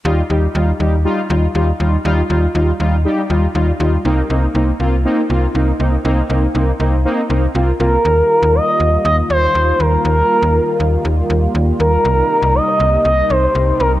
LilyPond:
<<
  \new Staff \with { instrumentName = "Analog synth lead" } { \time 4/4 \key ees \major \tempo 4 = 120 r1 | r1 | r1 | r2. r8 bes'8~ |
bes'4 ees''4 ees''8 c''4 bes'8 | bes'2 r4. bes'8~ | bes'4 ees''4 ees''8 c''4 bes'8 | }
  \new Staff \with { instrumentName = "Analog polysynth" } { \time 4/4 \key ees \major <g ees' f'>8 <g ees' g'>8 <g ees' f'>8 <g ees' g'>8 <g ees' f'>8 <g ees' f'>8 <g ees' f'>8 <g ees' f'>8 | <g ees' f'>8 <g ees' f'>8 <g ees' f'>8 <g ees' f'>8 <g ees' g'>8 <g ees' f'>8 <g ees' f'>8 <g ees' f'>8 | <bes c' ees'>8 <bes c' ees'>8 <bes c' ees'>8 <bes c' f'>8 <bes c' ees'>8 <bes c' f'>8 <bes c' ees'>8 <bes c' ees'>8 | <bes c' ees'>8 <bes c' ees'>8 <bes c' ees'>8 <bes c' ees'>8 <bes c' ees'>8 <bes c' ees'>8 <bes c' f'>8 <bes c' f'>8 |
r1 | r1 | r1 | }
  \new Staff \with { instrumentName = "Analog synth pad" } { \clef bass \time 4/4 \key ees \major << { r1 | r1 | r1 | r1 |
<ees f'>1~ | <ees f'>1 | <c ees'>1 | } \\ { r1 | r1 | r1 | r1 |
<g bes>1~ | <g bes>1~ | <g bes>1 | } >> }
  \new Staff \with { instrumentName = "FM bass" } { \clef bass \time 4/4 \key ees \major ees,8 ees,8 ees,8 ees,8. r16 ees,8 ees,8 ees,8 | ees,8 ees,8 ees,8 ees,8. r16 ees,8 ees,8 ees,8 | c,8 c,8 c,8 c,8. r16 c,8 c,8 c,8 | c,8 c,8 c,8 c,8. r16 c,8 c,8 c,8 |
ees,8 r16 ees,8 r16 ees,8 ees,8 ees,8 ees,8 ees,8 | ees,8 r16 ees,8 r16 ees,8 ees,8 ees,8 ees,8 ees,8 | c,8 r16 c,8 r16 c,8 c,8 c,8 c,8 c,8 | }
>>